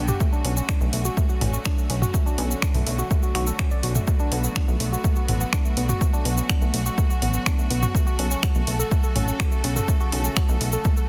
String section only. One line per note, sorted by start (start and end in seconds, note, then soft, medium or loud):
0.00 7.91 D3 medium
0.00 0.17 G3 medium
0.00 0.17 B3 medium
0.00 4.04 F#4 medium
0.00 0.17 G4 medium
0.20 11.09 F#3 medium
0.20 7.91 A3 medium
0.20 4.04 C#4 medium
4.08 5.99 B3 medium
4.08 11.09 F#4 medium
6.01 7.93 C#4 medium
7.95 11.09 C#3 medium
7.95 11.09 A3 medium
7.95 11.09 A4 loud